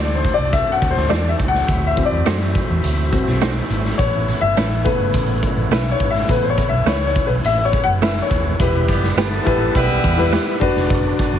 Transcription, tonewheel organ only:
0, 0, Header, 1, 2, 480
1, 0, Start_track
1, 0, Tempo, 576369
1, 1404, Time_signature, 4, 2, 24, 8
1, 9486, End_track
2, 0, Start_track
2, 0, Title_t, "Tonewheel organ"
2, 0, Program_c, 0, 16
2, 0, Note_on_c, 0, 54, 62
2, 0, Note_on_c, 0, 57, 57
2, 0, Note_on_c, 0, 60, 55
2, 0, Note_on_c, 0, 62, 72
2, 1384, Note_off_c, 0, 62, 0
2, 1393, Note_on_c, 0, 64, 72
2, 3290, Note_off_c, 0, 54, 0
2, 3290, Note_off_c, 0, 60, 0
2, 3299, Note_off_c, 0, 64, 0
2, 3327, Note_on_c, 0, 59, 61
2, 3330, Note_on_c, 0, 61, 66
2, 3332, Note_on_c, 0, 52, 69
2, 7130, Note_off_c, 0, 57, 0
2, 7131, Note_off_c, 0, 59, 0
2, 7132, Note_off_c, 0, 61, 0
2, 7133, Note_off_c, 0, 52, 0
2, 7161, Note_on_c, 0, 52, 65
2, 7163, Note_on_c, 0, 59, 64
2, 7166, Note_on_c, 0, 64, 72
2, 7167, Note_on_c, 0, 55, 60
2, 8825, Note_off_c, 0, 52, 0
2, 8827, Note_off_c, 0, 64, 0
2, 8828, Note_off_c, 0, 55, 0
2, 8835, Note_on_c, 0, 62, 80
2, 8836, Note_on_c, 0, 50, 66
2, 8839, Note_on_c, 0, 54, 63
2, 9486, Note_off_c, 0, 50, 0
2, 9486, Note_off_c, 0, 54, 0
2, 9486, Note_off_c, 0, 59, 0
2, 9486, Note_off_c, 0, 62, 0
2, 9486, End_track
0, 0, End_of_file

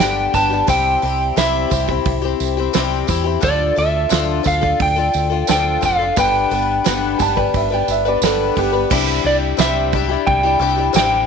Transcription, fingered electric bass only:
0, 0, Header, 1, 2, 480
1, 0, Start_track
1, 0, Key_signature, 0, "major"
1, 0, Tempo, 684932
1, 478, Time_signature, 4, 2, 24, 8
1, 7895, End_track
2, 0, Start_track
2, 0, Title_t, "Fingered electric bass"
2, 0, Program_c, 0, 33
2, 0, Note_on_c, 0, 31, 80
2, 184, Note_off_c, 0, 31, 0
2, 237, Note_on_c, 0, 31, 89
2, 429, Note_off_c, 0, 31, 0
2, 475, Note_on_c, 0, 36, 98
2, 668, Note_off_c, 0, 36, 0
2, 721, Note_on_c, 0, 36, 84
2, 912, Note_off_c, 0, 36, 0
2, 958, Note_on_c, 0, 36, 74
2, 1150, Note_off_c, 0, 36, 0
2, 1200, Note_on_c, 0, 36, 92
2, 1392, Note_off_c, 0, 36, 0
2, 1439, Note_on_c, 0, 36, 93
2, 1632, Note_off_c, 0, 36, 0
2, 1684, Note_on_c, 0, 36, 86
2, 1874, Note_off_c, 0, 36, 0
2, 1929, Note_on_c, 0, 36, 79
2, 2118, Note_off_c, 0, 36, 0
2, 2161, Note_on_c, 0, 40, 85
2, 2353, Note_off_c, 0, 40, 0
2, 2401, Note_on_c, 0, 38, 89
2, 2593, Note_off_c, 0, 38, 0
2, 2645, Note_on_c, 0, 38, 83
2, 2836, Note_off_c, 0, 38, 0
2, 2882, Note_on_c, 0, 38, 84
2, 3074, Note_off_c, 0, 38, 0
2, 3123, Note_on_c, 0, 38, 92
2, 3315, Note_off_c, 0, 38, 0
2, 3365, Note_on_c, 0, 38, 91
2, 3556, Note_off_c, 0, 38, 0
2, 3607, Note_on_c, 0, 38, 87
2, 3797, Note_off_c, 0, 38, 0
2, 3846, Note_on_c, 0, 38, 72
2, 4037, Note_off_c, 0, 38, 0
2, 4085, Note_on_c, 0, 29, 88
2, 4276, Note_off_c, 0, 29, 0
2, 4325, Note_on_c, 0, 31, 93
2, 4516, Note_off_c, 0, 31, 0
2, 4562, Note_on_c, 0, 31, 87
2, 4754, Note_off_c, 0, 31, 0
2, 4809, Note_on_c, 0, 31, 86
2, 4998, Note_off_c, 0, 31, 0
2, 5045, Note_on_c, 0, 31, 97
2, 5236, Note_off_c, 0, 31, 0
2, 5285, Note_on_c, 0, 31, 96
2, 5475, Note_off_c, 0, 31, 0
2, 5522, Note_on_c, 0, 31, 85
2, 5713, Note_off_c, 0, 31, 0
2, 5756, Note_on_c, 0, 31, 83
2, 5949, Note_off_c, 0, 31, 0
2, 6004, Note_on_c, 0, 31, 82
2, 6194, Note_off_c, 0, 31, 0
2, 6243, Note_on_c, 0, 36, 106
2, 6441, Note_off_c, 0, 36, 0
2, 6477, Note_on_c, 0, 36, 91
2, 6677, Note_off_c, 0, 36, 0
2, 6716, Note_on_c, 0, 36, 85
2, 7113, Note_off_c, 0, 36, 0
2, 7199, Note_on_c, 0, 36, 98
2, 7397, Note_off_c, 0, 36, 0
2, 7425, Note_on_c, 0, 36, 88
2, 7628, Note_off_c, 0, 36, 0
2, 7670, Note_on_c, 0, 33, 93
2, 7895, Note_off_c, 0, 33, 0
2, 7895, End_track
0, 0, End_of_file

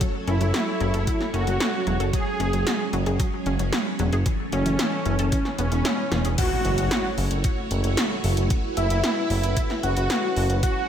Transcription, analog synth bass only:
0, 0, Header, 1, 2, 480
1, 0, Start_track
1, 0, Key_signature, 3, "minor"
1, 0, Tempo, 530973
1, 11, Time_signature, 4, 2, 24, 8
1, 9840, End_track
2, 0, Start_track
2, 0, Title_t, "Analog synth bass"
2, 0, Program_c, 0, 38
2, 251, Note_on_c, 0, 30, 91
2, 357, Note_off_c, 0, 30, 0
2, 370, Note_on_c, 0, 30, 80
2, 476, Note_off_c, 0, 30, 0
2, 729, Note_on_c, 0, 30, 96
2, 836, Note_off_c, 0, 30, 0
2, 849, Note_on_c, 0, 30, 80
2, 956, Note_off_c, 0, 30, 0
2, 1209, Note_on_c, 0, 30, 92
2, 1316, Note_off_c, 0, 30, 0
2, 1330, Note_on_c, 0, 30, 82
2, 1436, Note_off_c, 0, 30, 0
2, 1691, Note_on_c, 0, 28, 95
2, 1797, Note_off_c, 0, 28, 0
2, 1811, Note_on_c, 0, 30, 81
2, 1917, Note_off_c, 0, 30, 0
2, 2170, Note_on_c, 0, 30, 92
2, 2276, Note_off_c, 0, 30, 0
2, 2289, Note_on_c, 0, 30, 80
2, 2396, Note_off_c, 0, 30, 0
2, 2651, Note_on_c, 0, 30, 92
2, 2756, Note_off_c, 0, 30, 0
2, 2769, Note_on_c, 0, 30, 83
2, 2876, Note_off_c, 0, 30, 0
2, 3129, Note_on_c, 0, 30, 92
2, 3236, Note_off_c, 0, 30, 0
2, 3251, Note_on_c, 0, 30, 82
2, 3357, Note_off_c, 0, 30, 0
2, 3611, Note_on_c, 0, 28, 94
2, 3717, Note_off_c, 0, 28, 0
2, 3731, Note_on_c, 0, 30, 81
2, 3837, Note_off_c, 0, 30, 0
2, 4092, Note_on_c, 0, 30, 94
2, 4197, Note_off_c, 0, 30, 0
2, 4211, Note_on_c, 0, 30, 82
2, 4317, Note_off_c, 0, 30, 0
2, 4572, Note_on_c, 0, 30, 93
2, 4677, Note_off_c, 0, 30, 0
2, 4691, Note_on_c, 0, 30, 81
2, 4797, Note_off_c, 0, 30, 0
2, 5052, Note_on_c, 0, 28, 92
2, 5157, Note_off_c, 0, 28, 0
2, 5173, Note_on_c, 0, 28, 80
2, 5277, Note_off_c, 0, 28, 0
2, 5530, Note_on_c, 0, 28, 95
2, 5636, Note_off_c, 0, 28, 0
2, 5652, Note_on_c, 0, 28, 81
2, 5757, Note_off_c, 0, 28, 0
2, 6011, Note_on_c, 0, 30, 93
2, 6117, Note_off_c, 0, 30, 0
2, 6131, Note_on_c, 0, 30, 83
2, 6237, Note_off_c, 0, 30, 0
2, 6491, Note_on_c, 0, 30, 96
2, 6596, Note_off_c, 0, 30, 0
2, 6611, Note_on_c, 0, 30, 83
2, 6717, Note_off_c, 0, 30, 0
2, 6971, Note_on_c, 0, 30, 96
2, 7077, Note_off_c, 0, 30, 0
2, 7093, Note_on_c, 0, 30, 83
2, 7198, Note_off_c, 0, 30, 0
2, 7452, Note_on_c, 0, 30, 94
2, 7557, Note_off_c, 0, 30, 0
2, 7572, Note_on_c, 0, 30, 83
2, 7677, Note_off_c, 0, 30, 0
2, 7931, Note_on_c, 0, 30, 97
2, 8037, Note_off_c, 0, 30, 0
2, 8050, Note_on_c, 0, 30, 84
2, 8156, Note_off_c, 0, 30, 0
2, 8410, Note_on_c, 0, 30, 97
2, 8516, Note_off_c, 0, 30, 0
2, 8531, Note_on_c, 0, 30, 80
2, 8637, Note_off_c, 0, 30, 0
2, 8891, Note_on_c, 0, 30, 97
2, 8997, Note_off_c, 0, 30, 0
2, 9012, Note_on_c, 0, 30, 81
2, 9117, Note_off_c, 0, 30, 0
2, 9371, Note_on_c, 0, 30, 96
2, 9477, Note_off_c, 0, 30, 0
2, 9490, Note_on_c, 0, 30, 81
2, 9596, Note_off_c, 0, 30, 0
2, 9840, End_track
0, 0, End_of_file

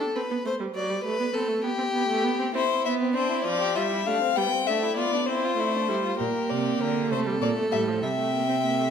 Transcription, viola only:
0, 0, Header, 1, 2, 480
1, 0, Start_track
1, 0, Key_signature, 0, "major"
1, 0, Tempo, 606061
1, 593, Time_signature, 6, 3, 24, 8
1, 7050, End_track
2, 0, Start_track
2, 0, Title_t, "Viola"
2, 0, Program_c, 0, 41
2, 4, Note_on_c, 0, 62, 54
2, 51, Note_off_c, 0, 62, 0
2, 126, Note_on_c, 0, 60, 66
2, 172, Note_off_c, 0, 60, 0
2, 245, Note_on_c, 0, 59, 58
2, 291, Note_off_c, 0, 59, 0
2, 358, Note_on_c, 0, 57, 55
2, 405, Note_off_c, 0, 57, 0
2, 474, Note_on_c, 0, 55, 58
2, 521, Note_off_c, 0, 55, 0
2, 593, Note_on_c, 0, 54, 66
2, 711, Note_on_c, 0, 55, 58
2, 723, Note_off_c, 0, 54, 0
2, 828, Note_off_c, 0, 55, 0
2, 832, Note_on_c, 0, 57, 67
2, 941, Note_off_c, 0, 57, 0
2, 945, Note_on_c, 0, 59, 63
2, 994, Note_off_c, 0, 59, 0
2, 1061, Note_on_c, 0, 60, 59
2, 1176, Note_on_c, 0, 57, 62
2, 1188, Note_off_c, 0, 60, 0
2, 1287, Note_off_c, 0, 57, 0
2, 1292, Note_on_c, 0, 59, 64
2, 1342, Note_off_c, 0, 59, 0
2, 1412, Note_on_c, 0, 60, 58
2, 1462, Note_off_c, 0, 60, 0
2, 1531, Note_on_c, 0, 59, 73
2, 1647, Note_off_c, 0, 59, 0
2, 1652, Note_on_c, 0, 57, 66
2, 1774, Note_on_c, 0, 59, 68
2, 1785, Note_off_c, 0, 57, 0
2, 1890, Note_off_c, 0, 59, 0
2, 1895, Note_on_c, 0, 60, 65
2, 1945, Note_off_c, 0, 60, 0
2, 2013, Note_on_c, 0, 60, 71
2, 2077, Note_off_c, 0, 60, 0
2, 2253, Note_on_c, 0, 59, 71
2, 2494, Note_on_c, 0, 60, 69
2, 2506, Note_off_c, 0, 59, 0
2, 2739, Note_off_c, 0, 60, 0
2, 2744, Note_on_c, 0, 53, 70
2, 2984, Note_on_c, 0, 55, 70
2, 2996, Note_off_c, 0, 53, 0
2, 3219, Note_off_c, 0, 55, 0
2, 3224, Note_on_c, 0, 57, 62
2, 3287, Note_off_c, 0, 57, 0
2, 3461, Note_on_c, 0, 55, 67
2, 3525, Note_off_c, 0, 55, 0
2, 3703, Note_on_c, 0, 57, 66
2, 3933, Note_off_c, 0, 57, 0
2, 3938, Note_on_c, 0, 59, 61
2, 4180, Note_on_c, 0, 60, 68
2, 4191, Note_off_c, 0, 59, 0
2, 4413, Note_off_c, 0, 60, 0
2, 4417, Note_on_c, 0, 57, 67
2, 4660, Note_on_c, 0, 55, 65
2, 4672, Note_off_c, 0, 57, 0
2, 4895, Note_off_c, 0, 55, 0
2, 4899, Note_on_c, 0, 58, 67
2, 5629, Note_on_c, 0, 57, 74
2, 5641, Note_off_c, 0, 58, 0
2, 5754, Note_on_c, 0, 55, 65
2, 5766, Note_off_c, 0, 57, 0
2, 5866, Note_off_c, 0, 55, 0
2, 5871, Note_on_c, 0, 58, 65
2, 5989, Note_off_c, 0, 58, 0
2, 5999, Note_on_c, 0, 57, 60
2, 6113, Note_off_c, 0, 57, 0
2, 6117, Note_on_c, 0, 55, 54
2, 6239, Note_on_c, 0, 53, 53
2, 6251, Note_off_c, 0, 55, 0
2, 6357, Note_off_c, 0, 53, 0
2, 6361, Note_on_c, 0, 55, 50
2, 6408, Note_off_c, 0, 55, 0
2, 6483, Note_on_c, 0, 57, 49
2, 6598, Note_off_c, 0, 57, 0
2, 6605, Note_on_c, 0, 58, 51
2, 6715, Note_off_c, 0, 58, 0
2, 6720, Note_on_c, 0, 60, 47
2, 6768, Note_off_c, 0, 60, 0
2, 6845, Note_on_c, 0, 58, 46
2, 6973, Note_on_c, 0, 57, 48
2, 6984, Note_off_c, 0, 58, 0
2, 7050, Note_off_c, 0, 57, 0
2, 7050, End_track
0, 0, End_of_file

